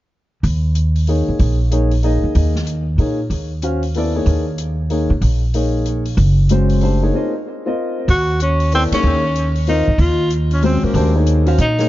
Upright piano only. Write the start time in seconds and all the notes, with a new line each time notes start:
1.08 A#3 D#4 G#4 C#5
1.71 A#3 D#4 G#4 C#5
2.03 A#3 D#4 G#4 D#5
2.99 A#3 D#4 G#4 C#5
3.63 C#4 F#4 C5 F5
3.96 B3 E4 A4 D5
4.15 A#3 D#4 G#4 C#5
4.90 A#3 D#4 G#4 C#5
5.54 A#3 D#4 G#4 C#5
6.50 G#3 C#4 F#4 C5
6.82 A3 D4 G4 C5
7.02 A#3 D#4 G#4 C#5
7.14 C4 F4 A#4 D#5
7.66 C4 F4 A#4 D#5
8.73 B3 E4 A4 D5
8.93 A#3 D#4 G#4 C#5
9.68 C4 F4 A#4 D#5
10.63 G#3 C#4 F#4 C5
10.95 A3 D4 G4 C5
11.15 A#3 D#4 G#4 C#5
11.46 C#4 F#4 C5 F5
11.78 A#3 D#4 G#4 C#5